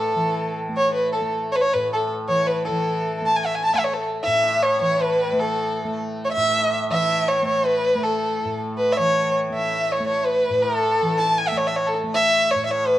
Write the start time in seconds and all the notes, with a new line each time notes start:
Already playing: A2 E3 A3 A4
0.15 E3
0.69 A3
0.77 C#5
0.94 B4
1.12 A4
1.21 A3
1.52 B4 C#5
1.62 C#5
1.73 A2 B4
1.93 A4
2.28 E3 C#5
2.47 B4
2.64 A4
2.69 E3
3.22 A3
3.26 A5
3.36 G#5
3.46 E5
3.55 G#5
3.65 A5
3.74 A3 E5
3.84 C#5
3.93 A4
4.23 A2 E5
4.63 C#5
4.80 E3 C#5
5.01 B4
5.33 A3
5.39 A4
5.85 A3
6.25 C#5
6.32 E5
6.37 A2
6.90 E3 E5
7.28 C#5
7.42 A3
7.48 C#5
7.66 B4
7.95 A3
8.03 A4
8.45 A2
8.78 B4
8.93 C#5 E5
8.98 E3
9.50 A3
9.55 E5
9.92 C#5
10.00 A3
10.07 C#5
10.25 B4
10.50 A2
10.62 A4
11.02 E3
11.18 A5
11.38 G#5
11.48 A3 E5
11.57 C#5
11.67 E5
11.76 C#5
11.87 A4
12.03 A3
12.15 E5
12.51 C#5
12.55 A2
12.66 E5
12.71 C#5
12.87 B4